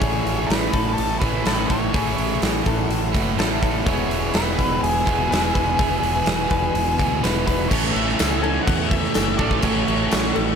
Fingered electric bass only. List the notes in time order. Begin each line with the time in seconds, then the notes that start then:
0.01 A1
0.25 A1
0.49 A1
0.74 A1
0.98 A1
1.22 A1
1.46 A1
1.70 A1
1.95 A1
2.18 A1
2.42 A1
2.66 A1
2.89 A1
3.14 F#1
3.37 A1
3.86 E1
4.09 E1
4.34 E1
4.59 E1
4.82 E1
5.07 E1
5.31 E1
5.56 E1
5.79 E1
6.02 E1
6.26 E1
6.51 E1
6.74 E1
7.00 D2
7.23 E1
7.71 A1
7.95 A1
8.20 C#2
8.68 E2
9.15 F#1
9.39 A1
9.64 A1
9.88 A1
10.13 A1
10.37 A1